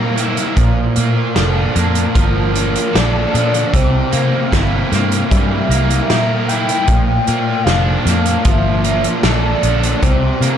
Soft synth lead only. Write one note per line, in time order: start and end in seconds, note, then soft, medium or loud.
0.00 0.13 A#4 loud
1.37 2.19 A4 medium
2.18 2.99 A#4 loud
2.98 3.77 D5 loud
3.75 4.92 C5 loud
5.32 6.45 E5 loud
6.48 7.65 G5 loud
7.64 8.45 F5 loud
8.44 9.24 E5 loud
9.23 10.02 D5 loud
10.02 10.58 C5 medium